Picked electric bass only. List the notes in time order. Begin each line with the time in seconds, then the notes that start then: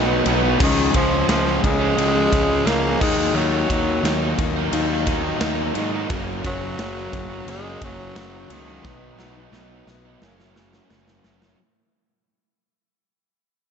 Already playing: B1
0.26 B1
0.60 C#2
0.94 C#2
1.29 C#2
1.64 C#2
1.97 C#2
2.32 C#2
2.66 C#2
3.02 D#2
3.34 D#2
3.70 D#2
4.03 D#2
4.38 D#2
4.72 D#2
5.41 D#2
5.76 G#2
6.10 F#1
6.45 F#1
6.78 F#1
7.13 F#1
7.46 F#1
7.82 F#1
8.15 F#1
8.50 C#2
8.84 B1
9.18 B1
9.52 B1
9.87 B1
10.22 F#1
10.91 F#1
11.25 F#1